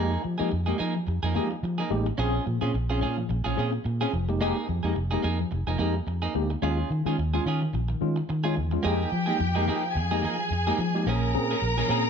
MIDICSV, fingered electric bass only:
0, 0, Header, 1, 2, 480
1, 0, Start_track
1, 0, Key_signature, -4, "minor"
1, 0, Tempo, 555042
1, 1890, Time_signature, 4, 2, 24, 8
1, 10462, End_track
2, 0, Start_track
2, 0, Title_t, "Fingered electric bass"
2, 0, Program_c, 0, 33
2, 0, Note_on_c, 0, 41, 102
2, 137, Note_off_c, 0, 41, 0
2, 216, Note_on_c, 0, 53, 79
2, 307, Note_off_c, 0, 53, 0
2, 351, Note_on_c, 0, 53, 92
2, 421, Note_off_c, 0, 53, 0
2, 454, Note_on_c, 0, 41, 93
2, 619, Note_off_c, 0, 41, 0
2, 692, Note_on_c, 0, 53, 73
2, 858, Note_off_c, 0, 53, 0
2, 929, Note_on_c, 0, 41, 93
2, 1022, Note_off_c, 0, 41, 0
2, 1063, Note_on_c, 0, 41, 80
2, 1169, Note_on_c, 0, 53, 92
2, 1182, Note_off_c, 0, 41, 0
2, 1336, Note_off_c, 0, 53, 0
2, 1410, Note_on_c, 0, 53, 91
2, 1577, Note_off_c, 0, 53, 0
2, 1647, Note_on_c, 0, 33, 77
2, 1815, Note_off_c, 0, 33, 0
2, 1890, Note_on_c, 0, 34, 107
2, 2057, Note_off_c, 0, 34, 0
2, 2132, Note_on_c, 0, 46, 88
2, 2225, Note_off_c, 0, 46, 0
2, 2264, Note_on_c, 0, 46, 88
2, 2338, Note_off_c, 0, 46, 0
2, 2369, Note_on_c, 0, 34, 86
2, 2608, Note_on_c, 0, 46, 89
2, 2621, Note_off_c, 0, 34, 0
2, 2776, Note_off_c, 0, 46, 0
2, 2850, Note_on_c, 0, 34, 107
2, 2944, Note_off_c, 0, 34, 0
2, 2987, Note_on_c, 0, 34, 84
2, 3060, Note_off_c, 0, 34, 0
2, 3096, Note_on_c, 0, 46, 89
2, 3261, Note_off_c, 0, 46, 0
2, 3331, Note_on_c, 0, 46, 102
2, 3498, Note_off_c, 0, 46, 0
2, 3574, Note_on_c, 0, 29, 93
2, 3907, Note_off_c, 0, 29, 0
2, 4055, Note_on_c, 0, 41, 91
2, 4147, Note_off_c, 0, 41, 0
2, 4185, Note_on_c, 0, 41, 80
2, 4259, Note_off_c, 0, 41, 0
2, 4291, Note_on_c, 0, 29, 94
2, 4458, Note_off_c, 0, 29, 0
2, 4533, Note_on_c, 0, 41, 98
2, 4699, Note_off_c, 0, 41, 0
2, 4774, Note_on_c, 0, 29, 106
2, 4867, Note_off_c, 0, 29, 0
2, 4903, Note_on_c, 0, 29, 89
2, 4978, Note_off_c, 0, 29, 0
2, 5010, Note_on_c, 0, 41, 95
2, 5177, Note_off_c, 0, 41, 0
2, 5248, Note_on_c, 0, 41, 81
2, 5416, Note_off_c, 0, 41, 0
2, 5491, Note_on_c, 0, 38, 74
2, 5658, Note_off_c, 0, 38, 0
2, 5729, Note_on_c, 0, 39, 89
2, 5897, Note_off_c, 0, 39, 0
2, 5970, Note_on_c, 0, 51, 94
2, 6064, Note_off_c, 0, 51, 0
2, 6107, Note_on_c, 0, 51, 93
2, 6180, Note_off_c, 0, 51, 0
2, 6212, Note_on_c, 0, 39, 82
2, 6379, Note_off_c, 0, 39, 0
2, 6450, Note_on_c, 0, 51, 87
2, 6618, Note_off_c, 0, 51, 0
2, 6690, Note_on_c, 0, 34, 92
2, 6858, Note_off_c, 0, 34, 0
2, 6932, Note_on_c, 0, 51, 99
2, 7099, Note_off_c, 0, 51, 0
2, 7175, Note_on_c, 0, 51, 91
2, 7413, Note_on_c, 0, 40, 69
2, 7426, Note_off_c, 0, 51, 0
2, 7580, Note_off_c, 0, 40, 0
2, 7652, Note_on_c, 0, 41, 103
2, 7819, Note_off_c, 0, 41, 0
2, 7887, Note_on_c, 0, 53, 74
2, 8056, Note_off_c, 0, 53, 0
2, 8130, Note_on_c, 0, 41, 96
2, 8368, Note_on_c, 0, 53, 92
2, 8381, Note_off_c, 0, 41, 0
2, 8607, Note_on_c, 0, 41, 106
2, 8620, Note_off_c, 0, 53, 0
2, 8847, Note_on_c, 0, 53, 93
2, 8860, Note_off_c, 0, 41, 0
2, 9015, Note_off_c, 0, 53, 0
2, 9085, Note_on_c, 0, 41, 80
2, 9254, Note_off_c, 0, 41, 0
2, 9327, Note_on_c, 0, 53, 91
2, 9568, Note_on_c, 0, 34, 106
2, 9581, Note_off_c, 0, 53, 0
2, 9808, Note_on_c, 0, 46, 81
2, 9821, Note_off_c, 0, 34, 0
2, 9975, Note_off_c, 0, 46, 0
2, 10049, Note_on_c, 0, 34, 88
2, 10216, Note_off_c, 0, 34, 0
2, 10285, Note_on_c, 0, 46, 80
2, 10453, Note_off_c, 0, 46, 0
2, 10462, End_track
0, 0, End_of_file